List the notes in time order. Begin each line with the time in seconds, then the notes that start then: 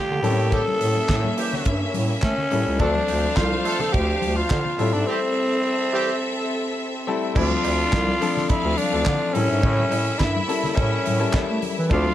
Already playing: F3 A3 C4 D4 F4 G4 A4 D5
0.09 D3, low conga
0.22 A2 G3 A#3 C4 C#4 E4 A4 E5, open hi-hat, muted conga, high conga
0.29 C#4
0.52 E3 G3 C#4 G4 A4, kick, closed hi-hat, muted conga, low conga
0.68 high conga
0.81 A2, open hi-hat, muted conga
0.97 high conga
1.09 A2, kick, snare, clap, closed hi-hat, muted conga
1.24 high conga
1.37 E3 G3 C#4 G4, open hi-hat
1.53 snare, low conga
1.65 G2, kick, closed hi-hat
1.94 A2, open hi-hat, muted conga, high conga
2.22 A3 C#4, kick, snare, clap, closed hi-hat, muted conga
2.38 low conga
2.51 A2 G3 A#3 C#4 E4 A4, open hi-hat, high conga
2.67 C#2
2.79 D2 F3 A3 C4 D4 A4 C5 F5, kick, closed hi-hat, cowbell, muted conga, low conga
2.95 high conga
3.08 D2, open hi-hat
3.24 high conga
3.36 C2 F4, kick, snare, clap, closed hi-hat, cowbell, muted conga
3.52 high conga
3.65 F3 A3 D4 A4, open hi-hat
3.79 A4, snare, low conga
3.93 D2 G4, kick, closed hi-hat, cowbell
4.22 D2, open hi-hat, muted conga, high conga
4.36 F4
4.50 D3, kick, snare, clap, closed hi-hat, cowbell
4.65 low conga
4.79 A2 G3 A3 C4 E4 A4 E5, open hi-hat, cowbell, muted conga, high conga
4.93 G#2 D4
5.07 E3 G3 C4 G4
5.93 E3 G3 C4 G4
7.07 G3 A3 C4 E4 A4
7.35 D2 F3 A3 C4 D4 F4 A4 D5, kick, crash, cowbell, muted conga, low conga
7.51 high conga
7.64 D2, open hi-hat, cowbell, muted conga
7.93 C2, kick, snare, clap, closed hi-hat, cowbell, muted conga
8.08 high conga
8.21 F3 A3 C4 D4 A4, open hi-hat, muted conga
8.37 snare, low conga
8.49 E4 F4 F5, kick, closed hi-hat, cowbell, muted conga
8.65 D2
8.77 D4, open hi-hat, high conga
8.92 D2 E3 A3 C4 D4 A4
8.99 F3
9.06 D3, kick, snare, clap, closed hi-hat, cowbell
9.34 A2 G3 A#3 C4 C#4 E4 A4 E5, open hi-hat, muted conga, high conga
9.42 C#4
9.51 G#2
9.62 A2, kick, closed hi-hat, cowbell, muted conga, low conga
9.80 high conga
9.91 A2, open hi-hat, cowbell, muted conga
10.19 G2 E4, kick, snare, clap, closed hi-hat, cowbell, muted conga
10.36 high conga
10.48 G3 A#3 C#4 E4 A4, open hi-hat, muted conga
10.63 snare, low conga
10.75 A2 C#4, kick, closed hi-hat, cowbell, muted conga
11.06 A2, open hi-hat, muted conga, high conga
11.19 G3 A#3 C#4 E4 A4
11.33 A3, kick, snare, clap, closed hi-hat, cowbell
11.50 A3
11.62 open hi-hat, high conga
11.79 E3
11.90 D2 F3 A3 C4 D4 F4 A4 D5, kick, closed hi-hat, cowbell, muted conga, low conga
12.06 high conga